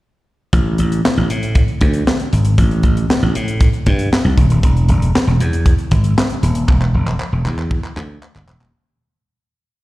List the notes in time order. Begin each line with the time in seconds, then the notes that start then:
0.53 A1, kick, closed hi-hat
0.78 A1, closed hi-hat
0.92 closed hi-hat
1.05 snare, clap
1.17 A1
1.30 A2, closed hi-hat
1.43 closed hi-hat
1.55 kick, closed hi-hat
1.68 closed hi-hat
1.81 D2, kick, closed hi-hat
1.94 closed hi-hat
2.07 snare, clap
2.19 closed hi-hat
2.33 G#1, closed hi-hat
2.45 closed hi-hat
2.58 A1, kick, closed hi-hat
2.71 closed hi-hat
2.83 A1, kick, closed hi-hat
2.97 closed hi-hat
3.10 snare, clap
3.22 A1
3.35 A2, closed hi-hat
3.48 closed hi-hat
3.60 kick, closed hi-hat
3.73 closed hi-hat
3.86 G2, kick, closed hi-hat
3.99 closed hi-hat
4.13 snare, clap
4.25 C2
4.38 E1, kick, closed hi-hat
4.50 D#1, closed hi-hat
4.63 E1, kick, closed hi-hat
4.77 closed hi-hat
4.89 E1, closed hi-hat
5.02 closed hi-hat
5.15 snare, clap
5.27 E1
5.40 E2, closed hi-hat
5.53 closed hi-hat
5.66 kick, closed hi-hat
5.78 closed hi-hat
5.91 G#1, kick, closed hi-hat
6.04 closed hi-hat
6.18 snare, clap
6.30 closed hi-hat
6.43 D#1, closed hi-hat
6.55 closed hi-hat
6.68 E1, kick, clap
6.82 clap
6.94 E1
7.07 clap
7.20 clap
7.32 E1
7.45 E2, clap
7.59 clap
7.71 kick
7.84 clap
7.96 D2, clap
8.23 clap
8.35 G1, clap
8.48 E1, clap
8.61 D#1, clap